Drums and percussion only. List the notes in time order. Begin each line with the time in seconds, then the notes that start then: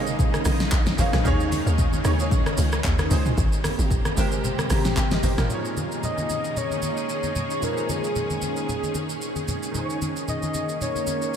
0.07 shaker
0.19 kick, low conga, shaker
0.34 cross-stick, high conga, shaker
0.45 cross-stick, open hi-hat, high conga, shaker
0.60 snare, shaker
0.72 kick, clap, shaker
0.86 snare, high conga, shaker
0.98 open hi-hat, high conga, low conga, shaker
1.13 cross-stick, snare, mid tom, shaker
1.25 kick, low conga, shaker
1.40 shaker
1.52 open hi-hat, high conga, shaker
1.67 shaker
1.78 kick, low conga, shaker
1.93 high conga, shaker
2.05 cross-stick, open hi-hat, high conga, shaker
2.19 shaker
2.31 kick, low conga, shaker
2.46 cross-stick, high conga, shaker
2.58 open hi-hat, high conga, shaker
2.72 cross-stick, shaker
2.84 kick, clap, shaker
2.99 cross-stick, high conga, shaker
3.11 open hi-hat, high conga, low conga, shaker
3.26 mid tom, shaker
3.37 kick, low conga, shaker
3.53 shaker
3.64 cross-stick, open hi-hat, high conga, shaker
3.79 shaker
3.91 kick, low conga, shaker
4.05 cross-stick, high conga, shaker
4.17 open hi-hat, high conga, shaker
4.32 shaker
4.44 low conga, shaker
4.58 cross-stick, high conga, shaker
4.70 cross-stick, open hi-hat, high conga, shaker
4.85 snare, mid tom, shaker
4.97 clap, shaker
5.11 snare, high conga, shaker
5.23 open hi-hat, high conga, low conga, shaker
5.38 cross-stick, snare, mid tom, shaker
5.50 low conga, shaker
5.65 shaker
5.77 high conga, shaker
5.92 shaker
6.03 low conga, shaker
6.18 high conga, shaker
6.30 high conga, shaker
6.44 shaker
6.56 low conga, shaker
6.71 high conga, shaker
6.82 high conga, shaker
6.97 shaker
7.09 shaker
7.23 high conga, shaker
7.36 high conga, low conga, shaker
7.50 shaker
7.62 low conga, shaker
7.77 shaker
7.89 high conga, shaker
8.04 shaker
8.16 low conga, shaker
8.30 high conga, shaker
8.42 high conga, shaker
8.56 shaker
8.69 low conga, shaker
8.83 high conga, shaker
8.95 high conga, shaker
9.10 shaker
9.22 shaker
9.36 high conga, shaker
9.48 high conga, low conga, shaker
9.63 shaker
9.75 low conga, shaker
9.90 shaker
10.02 high conga, shaker
10.16 shaker
10.28 low conga, shaker
10.43 high conga, shaker
10.54 high conga, shaker
10.69 shaker
10.81 low conga, shaker
10.95 high conga, shaker
11.07 high conga, shaker
11.22 shaker